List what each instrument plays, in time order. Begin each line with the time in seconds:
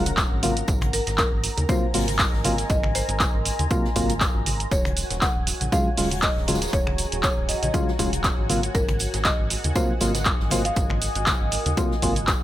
Already playing: analog synth bass D#1, ambient pad C#4 G#4 F#5 A#5, analog synth pad A#4 A#5, marimba C#5
0.06 closed hi-hat, high conga, shaker
0.17 kick, snare, clap, closed hi-hat, tambourine, shaker
0.31 analog synth bass G#1
0.43 synth stab C3 F#3 A#3 F4, ambient pad A#4, open hi-hat, tambourine, high conga, shaker
0.57 closed hi-hat, shaker
0.68 analog synth bass G#1, kick, closed hi-hat, tambourine, shaker
0.81 ambient pad G#5, finger snap, closed hi-hat, high conga
0.93 marimba A#4, open hi-hat, tambourine, shaker
1.03 ambient pad D#5
1.07 analog synth bass G#1, snare, closed hi-hat, low conga, shaker
1.18 marimba A#4, kick, snare, clap, closed hi-hat, tambourine, high conga, shaker
1.32 analog synth bass G#1
1.43 open hi-hat, tambourine, low conga, shaker
1.57 analog synth bass D#2, closed hi-hat, high conga, shaker
1.69 synth stab C3 F#3 A#3 F4, marimba C5, kick, closed hi-hat, tambourine, shaker
1.94 analog synth bass G#1, synth stab C3 F#3 A#3 F4, ambient pad C6, snare, open hi-hat, shaker
2.08 closed hi-hat, high conga, shaker
2.19 kick, snare, clap, closed hi-hat, tambourine, shaker
2.33 analog synth bass G#1, snare
2.44 synth stab C3 F#3 A#3 F4, open hi-hat, tambourine, high conga, shaker
2.58 snare, closed hi-hat, shaker
2.70 analog synth bass G#1, marimba D#5, kick, closed hi-hat, tambourine, shaker
2.83 finger snap, high conga, low conga
2.95 marimba C5, open hi-hat, tambourine, shaker
3.08 analog synth bass G#1, closed hi-hat, low conga, shaker
3.20 kick, snare, clap, closed hi-hat, tambourine, high conga, shaker
3.34 analog synth bass G#1
3.45 open hi-hat, tambourine, low conga, shaker
3.59 analog synth bass D#2, closed hi-hat, high conga, shaker
3.71 synth stab C3 F#3 A#3 F4, kick, closed hi-hat, tambourine, shaker
3.84 snare
3.96 analog synth bass G#1, synth stab C3 F#3 A#3 F4, kick, open hi-hat, tambourine, shaker
4.09 closed hi-hat, high conga, shaker
4.20 kick, snare, clap, closed hi-hat, tambourine, shaker
4.35 analog synth bass G#1
4.46 open hi-hat, tambourine, high conga, shaker
4.60 closed hi-hat, shaker
4.71 analog synth bass D#1, analog synth pad F#4 G#5, ambient pad G#4, marimba C#5, kick, closed hi-hat, tambourine, shaker
4.85 ambient pad C#5, finger snap, closed hi-hat, high conga
4.97 open hi-hat, tambourine, shaker
5.10 analog synth bass D#1, snare, closed hi-hat, low conga, shaker
5.21 marimba F#5, ambient pad A#5, kick, snare, clap, closed hi-hat, tambourine, high conga, shaker
5.35 analog synth bass D#1, ambient pad F#4
5.47 open hi-hat, tambourine, low conga, shaker
5.61 analog synth bass A#1, closed hi-hat, high conga, shaker
5.72 synth stab C#3 F#3 G#3 F4, marimba F5, kick, closed hi-hat, tambourine, shaker
5.97 analog synth bass D#1, synth stab C#3 F#3 G#3 F4, snare, open hi-hat, shaker
6.10 closed hi-hat, high conga, shaker
6.22 marimba D#5, kick, snare, clap, closed hi-hat, tambourine, shaker
6.37 analog synth bass D#1, snare
6.47 synth stab C#3 F#3 G#3 F4, snare, open hi-hat, tambourine, high conga, shaker
6.55 snare, tambourine
6.62 snare, closed hi-hat, tambourine, shaker
6.68 snare, tambourine
6.73 analog synth bass D#1, marimba C#5, kick, closed hi-hat, tambourine, shaker
6.87 finger snap, high conga, low conga
6.98 open hi-hat, tambourine, shaker
7.12 analog synth bass D#1, closed hi-hat, low conga, shaker
7.23 marimba C#5, kick, snare, clap, closed hi-hat, tambourine, high conga, shaker
7.37 analog synth bass D#1
7.49 marimba D#5, open hi-hat, tambourine, low conga, shaker
7.63 analog synth bass A#1, marimba D#5, closed hi-hat, high conga, shaker
7.74 synth stab C#3 F#3 G#3 F4, kick, closed hi-hat, tambourine, shaker
7.88 snare
7.99 analog synth bass D#1, synth stab C#3 F#3 G#3 F4, kick, open hi-hat, tambourine, shaker
8.13 closed hi-hat, high conga, shaker
8.24 kick, snare, clap, closed hi-hat, tambourine, shaker
8.38 analog synth bass G#1
8.49 synth stab C3 F#3 A#3 F4, ambient pad A#4, open hi-hat, tambourine, high conga, shaker
8.63 closed hi-hat, shaker
8.75 analog synth bass G#1, marimba A#4, ambient pad D#6, kick, closed hi-hat, tambourine, shaker
8.88 finger snap, closed hi-hat, high conga
8.93 ambient pad D#5
8.99 open hi-hat, tambourine, shaker
9.14 analog synth bass G#1, snare, closed hi-hat, low conga, shaker
9.18 ambient pad G#5
9.25 marimba D#5, kick, snare, clap, closed hi-hat, tambourine, high conga, shaker
9.39 analog synth bass G#1
9.50 open hi-hat, tambourine, low conga, shaker
9.64 analog synth bass D#2, closed hi-hat, high conga, shaker
9.75 synth stab C3 F#3 A#3 F4, marimba C5, kick, closed hi-hat, tambourine, shaker
10.00 analog synth bass G#1, synth stab C3 F#3 A#3 F4, snare, open hi-hat, tambourine, shaker
10.15 snare, closed hi-hat, tambourine, high conga, shaker
10.25 kick, clap, closed hi-hat, tambourine, shaker
10.40 analog synth bass G#1, snare
10.51 synth stab C3 F#3 A#3 F4, marimba C5, snare, open hi-hat, tambourine, high conga, shaker
10.65 marimba F5, closed hi-hat, shaker
10.76 analog synth bass G#1, kick, closed hi-hat, tambourine, shaker
10.90 finger snap, high conga, low conga
11.01 open hi-hat, tambourine, shaker
11.15 analog synth bass G#1, closed hi-hat, low conga, shaker
11.26 kick, snare, clap, closed hi-hat, tambourine, high conga, shaker
11.41 analog synth bass G#1
11.51 open hi-hat, tambourine, low conga, shaker
11.66 analog synth bass D#2, closed hi-hat, high conga, shaker
11.77 synth stab C3 F#3 A#3 F4, kick, closed hi-hat, tambourine, shaker
11.91 snare
12.02 analog synth bass G#1, synth stab C3 F#3 A#3 F4, kick, open hi-hat, shaker
12.15 closed hi-hat, high conga, shaker
12.27 kick, snare, clap, closed hi-hat, tambourine, shaker